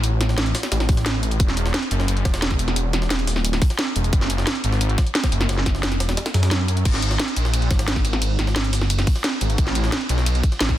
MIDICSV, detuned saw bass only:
0, 0, Header, 1, 2, 480
1, 0, Start_track
1, 0, Key_signature, 5, "minor"
1, 0, Tempo, 340909
1, 51, Time_signature, 4, 2, 24, 8
1, 15180, End_track
2, 0, Start_track
2, 0, Title_t, "Detuned saw bass"
2, 0, Program_c, 0, 39
2, 0, Note_on_c, 0, 33, 98
2, 751, Note_off_c, 0, 33, 0
2, 1011, Note_on_c, 0, 33, 102
2, 1951, Note_off_c, 0, 33, 0
2, 1970, Note_on_c, 0, 28, 99
2, 2191, Note_off_c, 0, 28, 0
2, 2210, Note_on_c, 0, 28, 98
2, 2431, Note_off_c, 0, 28, 0
2, 2690, Note_on_c, 0, 30, 98
2, 3151, Note_off_c, 0, 30, 0
2, 3171, Note_on_c, 0, 28, 101
2, 4508, Note_off_c, 0, 28, 0
2, 4508, Note_on_c, 0, 27, 101
2, 4889, Note_off_c, 0, 27, 0
2, 4889, Note_on_c, 0, 26, 101
2, 5072, Note_off_c, 0, 26, 0
2, 5573, Note_on_c, 0, 28, 95
2, 5793, Note_off_c, 0, 28, 0
2, 5812, Note_on_c, 0, 30, 99
2, 6032, Note_off_c, 0, 30, 0
2, 6054, Note_on_c, 0, 30, 93
2, 6273, Note_off_c, 0, 30, 0
2, 6535, Note_on_c, 0, 32, 93
2, 6994, Note_off_c, 0, 32, 0
2, 7492, Note_on_c, 0, 30, 90
2, 8322, Note_off_c, 0, 30, 0
2, 8322, Note_on_c, 0, 29, 90
2, 8672, Note_off_c, 0, 29, 0
2, 8931, Note_on_c, 0, 42, 92
2, 9632, Note_off_c, 0, 42, 0
2, 9651, Note_on_c, 0, 32, 101
2, 9872, Note_off_c, 0, 32, 0
2, 9890, Note_on_c, 0, 32, 97
2, 10111, Note_off_c, 0, 32, 0
2, 10370, Note_on_c, 0, 34, 97
2, 10831, Note_off_c, 0, 34, 0
2, 10851, Note_on_c, 0, 32, 100
2, 12188, Note_off_c, 0, 32, 0
2, 12188, Note_on_c, 0, 31, 100
2, 12568, Note_off_c, 0, 31, 0
2, 12568, Note_on_c, 0, 30, 100
2, 12752, Note_off_c, 0, 30, 0
2, 13252, Note_on_c, 0, 32, 93
2, 13472, Note_off_c, 0, 32, 0
2, 13492, Note_on_c, 0, 33, 101
2, 13713, Note_off_c, 0, 33, 0
2, 13734, Note_on_c, 0, 33, 100
2, 13953, Note_off_c, 0, 33, 0
2, 14213, Note_on_c, 0, 35, 101
2, 14673, Note_off_c, 0, 35, 0
2, 14933, Note_on_c, 0, 33, 106
2, 15180, Note_off_c, 0, 33, 0
2, 15180, End_track
0, 0, End_of_file